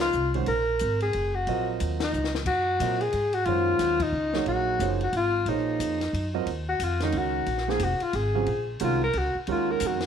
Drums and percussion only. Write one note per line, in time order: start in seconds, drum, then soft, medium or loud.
0.13 hi-hat pedal soft
0.34 ride soft
0.46 ride medium
0.79 hi-hat pedal medium
0.79 ride medium
1.00 ride soft
1.13 ride medium
1.47 ride medium
1.80 hi-hat pedal soft
1.80 ride medium
2.00 snare medium
2.00 ride medium
2.13 hi-hat pedal soft
2.24 snare soft
2.35 snare medium
2.46 kick medium
2.46 crash medium
2.80 hi-hat pedal medium
2.80 ride medium
3.01 ride soft
3.13 ride medium
3.33 ride soft
3.45 ride soft
3.79 snare soft
3.79 hi-hat pedal medium
3.79 ride medium
4.00 kick medium
4.00 ride medium
4.34 snare soft
4.46 ride soft
4.80 hi-hat pedal medium
4.80 ride medium
5.01 ride soft
5.13 ride medium
5.46 ride medium
5.80 hi-hat pedal medium
5.80 ride medium
6.01 snare soft
6.01 ride soft
6.14 ride medium
6.47 ride medium
6.80 hi-hat pedal medium
6.80 ride medium
7.00 snare soft
7.00 ride soft
7.12 ride medium
7.46 ride soft
7.57 snare soft
7.69 snare soft
7.79 hi-hat pedal medium
7.79 ride medium
8.00 ride soft
8.13 ride medium
8.46 ride soft
8.80 hi-hat pedal medium
8.80 ride medium
9.13 ride medium
9.47 ride medium
9.80 hi-hat pedal medium
9.80 ride medium
10.00 snare medium
10.00 ride soft